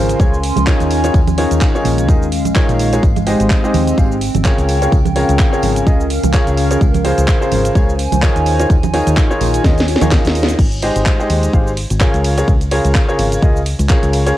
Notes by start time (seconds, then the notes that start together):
Already playing: G#1 C#3 C#4 F4 G#4 A#4 C5 C6
0.00 G#5
0.09 closed hi-hat, tambourine, shaker
0.19 C#2 C#3 C#4 F4 G#4 A#4 C#5, kick, tambourine, shaker
0.34 shaker
0.43 open hi-hat, tambourine
0.56 C#2, closed hi-hat, tambourine, high conga, shaker
0.66 D#3 D#4 F4 G#4 A#4 C#5, kick, clap, tambourine, shaker
0.80 D#2, closed hi-hat, tambourine, shaker
0.90 open hi-hat, tambourine
1.04 D#3 D#4 F4 G#4 A#4 C#5, closed hi-hat, tambourine, shaker
1.14 D#2, kick, tambourine, shaker
1.27 closed hi-hat, tambourine, high conga, shaker
1.37 D#3 D#4 F4 G#4 A#4 C#5, open hi-hat, tambourine
1.47 D#2 G#3 F5, closed hi-hat
1.51 tambourine, shaker
1.61 kick, clap, tambourine, shaker
1.74 D#3 D#4 F4 G#4 A#4 C#5, tambourine, shaker
1.85 A#1, open hi-hat, tambourine, high conga
1.98 closed hi-hat, tambourine, shaker
2.09 D#2 D#3 D#4 F4 G#4 A#4 D#5, kick, tambourine, shaker
2.23 shaker
2.32 open hi-hat, tambourine
2.45 A#1, closed hi-hat, tambourine, high conga, shaker
2.55 D#3 D#4 F4 G#4 A#4 C#5, kick, clap, tambourine, shaker
2.69 A#1, closed hi-hat, tambourine, shaker
2.79 open hi-hat, tambourine
2.92 G#3 D#4 F4 G#4 A#4 C#5, closed hi-hat, tambourine, shaker
3.03 G#1 C4, kick, tambourine, shaker
3.16 closed hi-hat, tambourine, high conga, shaker
3.27 G#3 D#4 G4 G#4 C5 D#5, open hi-hat, tambourine
3.40 G#1, closed hi-hat, tambourine, shaker
3.50 kick, clap, tambourine, shaker
3.64 G#3 D#4 G4 G#4 C5 D#5, tambourine, shaker
3.74 D#2, open hi-hat, tambourine, high conga
3.78 G5
3.87 closed hi-hat, tambourine, shaker
3.97 G#1 G#3 D#4 G4 G#4 C5 F5, kick, tambourine, shaker
4.11 shaker
4.21 open hi-hat, tambourine
4.34 G#1, closed hi-hat, tambourine, high conga, shaker
4.44 C#3 C#4 F4 G#4 A#4 C#5, kick, clap, shaker
4.58 C#2, closed hi-hat, tambourine, shaker
4.68 C#4, open hi-hat, tambourine
4.82 C#3 C#4 F4 G#4 A#4 C#5, closed hi-hat, tambourine, shaker
4.92 C#2, kick, tambourine, shaker
5.05 closed hi-hat, tambourine, high conga, shaker
5.16 C#3 C#4 F4 G#4 A#4 C#5, open hi-hat, tambourine
5.29 C#2, closed hi-hat, shaker
5.39 kick, clap, tambourine, shaker
5.46 A#4
5.52 C#3 C#4 F4 G#4 A#4 C#5 F5, tambourine, shaker
5.62 G#1, open hi-hat, tambourine, high conga
5.76 closed hi-hat, tambourine, shaker
5.87 C#2 C#3 C#4 F4 G#4 A#4 D#5, kick, tambourine, shaker
6.00 shaker
6.10 open hi-hat, tambourine
6.23 C#2, closed hi-hat, tambourine, high conga, shaker
6.33 C#3 C#4 F4 G#4 A#4 C#5, kick, clap, tambourine, shaker
6.47 C#2, closed hi-hat, tambourine, shaker
6.57 open hi-hat, tambourine
6.71 C#3 C#4 F4 G#4 A#4 C#5, closed hi-hat, tambourine, shaker
6.81 C#2, kick, tambourine, shaker
6.94 closed hi-hat, tambourine, high conga, shaker
7.05 C#3 C#4 F4 G#4 A#4 C5, open hi-hat, tambourine
7.18 C#2, closed hi-hat, tambourine, shaker
7.28 C5, kick, clap, tambourine, shaker
7.42 C#3 C#4 F4 G#4 A#4 C5, tambourine, shaker
7.51 G#1, open hi-hat, tambourine, high conga
7.56 G#5
7.65 closed hi-hat, tambourine, shaker
7.76 C#2 C#3 C#4 F4 G#4 A#4 C#5, kick, tambourine, shaker
7.89 shaker
7.99 open hi-hat, tambourine
8.12 C#2, closed hi-hat, tambourine, high conga, shaker
8.22 D#3 D#4 F4 G#4 A#4 C#5, kick, clap, tambourine, shaker
8.36 D#2, closed hi-hat, tambourine, shaker
8.46 F4, open hi-hat, tambourine
8.60 D#3 D#4 F4 G#4 A#4 C#5, closed hi-hat, tambourine, shaker
8.70 D#2, kick, tambourine, shaker
8.83 closed hi-hat, tambourine, high conga, shaker
8.87 C#5
8.94 D#3 D#4 F4 G#4 A#4 C#5, open hi-hat, tambourine
9.06 D#2, closed hi-hat, tambourine, shaker
9.17 kick, clap, tambourine, shaker
9.31 D#3 D#4 F4 G#4 A#4 C#5, tambourine, shaker
9.41 A#1, open hi-hat, tambourine, high conga
9.54 closed hi-hat, tambourine, shaker
9.64 D#2 D#3 D#4 F4 G#4 A#4 D#5, kick, snare, tambourine, shaker
9.78 snare, closed hi-hat, tambourine, shaker
9.88 open hi-hat, tambourine
9.96 snare
10.01 D#2 D#3 D#4 F4 G#4 A#4 C#5, closed hi-hat, tambourine, high conga, shaker
10.11 F4 G#4, kick, snare, clap, tambourine, shaker
10.25 D#2, snare, closed hi-hat, tambourine, shaker
10.35 open hi-hat, tambourine
10.43 snare
10.49 closed hi-hat, tambourine, shaker
10.59 G#1, kick, crash, shaker
10.72 closed hi-hat, shaker
10.83 G#3 D#4 G4 G#4 C5 D#5, open hi-hat, ride
10.96 G#1, closed hi-hat, shaker
11.06 kick, clap, shaker
11.19 G#3 D#4 G4 G#4 C5 D#5, shaker
11.30 D#2, open hi-hat, ride
11.43 closed hi-hat, shaker
11.54 G#1 G#3 D#4 G4 G#4 C5 F5, kick, shaker
11.67 shaker
11.77 open hi-hat, ride
11.90 G#1, closed hi-hat, shaker
12.00 C#3 C#4 F4 G#4 A#4 C#5, kick, clap, shaker
12.14 C#2, closed hi-hat, shaker
12.24 open hi-hat, ride
12.38 C#3 C#4 F4 G#4 A#4 C#5, closed hi-hat, shaker
12.48 C#2, kick, shaker
12.61 closed hi-hat, shaker
12.72 C#3 C#4 F4 G#4 A#4 C#5, open hi-hat, ride
12.85 C#2, closed hi-hat, shaker
12.95 kick, clap, shaker
13.08 C#3 C#4 F4 G#4 A#4 C#5, shaker
13.19 G#1, open hi-hat, ride
13.32 closed hi-hat, shaker
13.42 C#2 C#3 C#4 F4 G#4 A#4 D#5, kick, shaker
13.56 shaker
13.66 open hi-hat, ride
13.79 C#2, closed hi-hat, shaker
13.89 C#3 C#4 F4 G#4 A#4 C#5, kick, clap, shaker
14.03 C#2, closed hi-hat, shaker
14.13 open hi-hat, ride
14.26 C#3 C#4 F4 G#4 A#4 C#5, closed hi-hat, shaker